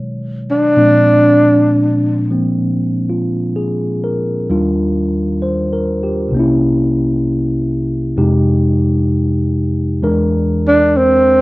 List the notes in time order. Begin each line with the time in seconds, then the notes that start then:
Already playing: B2 D#3 F#3 G#3 C#5
0.51 D4
0.77 A#2 F3 G#3 C4 D4
2.30 F3 A#3 C4
3.10 F4
3.56 G#4
4.04 A#4
4.49 D#2 D#3 G3 D4 F4
5.42 C5
5.73 A#4
6.03 G4
6.28 C2 C3
6.34 A#3 C#4
6.39 E4
8.17 F2 C3 G#3 D#4 G4
10.03 E2 E3 G#3 D4 A#4
10.68 D4
10.97 C4